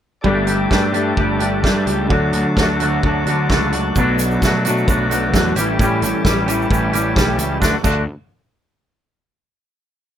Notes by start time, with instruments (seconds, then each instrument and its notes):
0.21 picked electric bass G1, clean electric guitar G3, tonewheel organ G4 A4 D5 A5, kick
0.26 clean electric guitar A3 D4 G4
0.47 clean electric guitar A3 D4 G4, closed hi-hat
0.70 picked electric bass G2, clean electric guitar G3 A3 D4 G4, kick, snare
0.92 clean electric guitar G3 A3 D4 G4, closed hi-hat
1.16 picked electric bass G1, clean electric guitar G3 A3 D4 G4, kick
1.39 clean electric guitar G3 A3 D4 G4, closed hi-hat
1.62 picked electric bass G2, clean electric guitar G3 A3 D4 G4, kick, snare
1.86 picked electric bass C#2, clean electric guitar A3 D4 G4, closed hi-hat
2.09 picked electric bass D2, clean electric guitar D3 F#3 A3 D4 F#4, tonewheel organ F#4 D5, kick
2.33 picked electric bass D2, clean electric guitar A3 D4 F#4, closed hi-hat
2.57 picked electric bass D2, clean electric guitar F#3 A3 D4 F#4, kick, snare
2.80 clean electric guitar D3 F#3 A3 D4 F#4, closed hi-hat
3.03 picked electric bass D2, clean electric guitar F#3 A3 D4 F#4, kick
3.26 picked electric bass D2, clean electric guitar D3 F#3 A3 D4 F#4, closed hi-hat
3.49 picked electric bass C#2, clean electric guitar F#3 A3 D4 F#4, kick, snare
3.72 clean electric guitar A3 D4 F#4, closed hi-hat
3.96 picked electric bass B1, clean electric guitar B2 F#3 A3 D4 F#4, tonewheel organ F#4 B4, kick, shaker
4.19 clean electric guitar A3 D4 F#4, closed hi-hat, shaker
4.31 shaker
4.42 picked electric bass B2, clean electric guitar F#3 A3 D4 F#4, kick, snare, shaker
4.65 clean electric guitar B2 F#3 A3 D4 F#4, closed hi-hat, shaker
4.77 shaker
4.87 picked electric bass B1, clean electric guitar F#3 A3 D4 F#4, kick, shaker
5.10 clean electric guitar B2 F#3 A3 D4 F#4, closed hi-hat, shaker
5.33 picked electric bass E2, clean electric guitar F#3 A3 D4 F#4, kick, snare, shaker
5.55 picked electric bass A1, clean electric guitar E3 G3 C#4 G4, tonewheel organ G4 C#5 E5, closed hi-hat, shaker
5.59 clean electric guitar A2
5.79 picked electric bass A2, clean electric guitar A2 E3 G3 C#4 G4, kick, shaker
6.02 picked electric bass A1, clean electric guitar G3 C#4 G4, closed hi-hat, shaker
6.24 picked electric bass A1, clean electric guitar E3 G3 C#4 G4, kick, snare, shaker
6.46 clean electric guitar A2 E3 G3 C#4 G4, closed hi-hat, shaker
6.62 shaker
6.69 picked electric bass A1, clean electric guitar E3 G3 C#4 G4, kick, shaker
6.93 picked electric bass A1, clean electric guitar A2 E3 G3 C#4 G4, closed hi-hat, shaker
7.15 picked electric bass B1, clean electric guitar E3 G3 C#4 G4, kick, snare, shaker
7.37 picked electric bass C#2, clean electric guitar G3 C#4 G4, closed hi-hat, shaker
7.60 picked electric bass D2, clean electric guitar D3 A3 D4 F#4, tonewheel organ D4 F#4 A4 F#5, kick, snare, shaker
7.83 picked electric bass D2, clean electric guitar D3 A3 D4 F#4, kick, crash, shaker